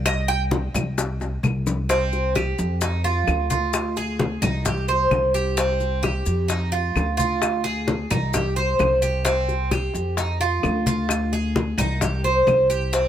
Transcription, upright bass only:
0.00 0.68 C2 loud
0.75 1.40 C2 loud
1.43 2.52 C2 medium
2.59 3.23 F2 loud
3.28 4.36 D2 loud
4.42 5.07 C2 loud
5.11 6.20 C2 loud
6.26 6.91 F2 medium
6.95 8.04 D2 medium
8.11 8.75 C2 medium
8.79 9.88 C2 loud
9.94 10.59 F2 medium
10.64 11.72 D2 loud
11.78 12.43 C2 loud
12.47 13.08 C2 loud

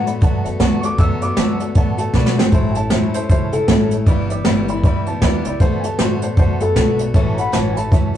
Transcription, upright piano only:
0.81 0.83 C#6 medium
0.85 0.99 D6 loud
0.99 1.21 E6 medium
1.22 1.60 D6 loud
1.98 2.13 A5 medium
2.14 2.37 D5 medium
2.38 2.52 C5 medium
2.53 2.76 C5 medium
2.71 2.74 G#5 medium
2.76 2.91 A5 medium
2.92 3.13 C5 medium
3.14 3.29 C5 medium
3.30 3.53 C5 loud
3.53 3.90 A4 loud
5.07 5.22 A5 medium
5.22 5.44 D5 medium
5.45 5.60 D5 medium
5.61 5.83 C5 loud
5.80 5.82 G#5 medium
5.84 5.99 A5 medium
5.99 6.21 C5 medium
6.23 6.37 C5 medium
6.39 6.61 C5 medium
6.62 6.99 A4 loud
7.34 7.37 A#5 medium
7.39 7.52 F#5 medium
7.39 7.53 B5 medium
7.53 7.75 C#5 medium
7.53 7.76 A5 medium
7.73 7.75 G#5 medium
7.77 8.17 A5 loud

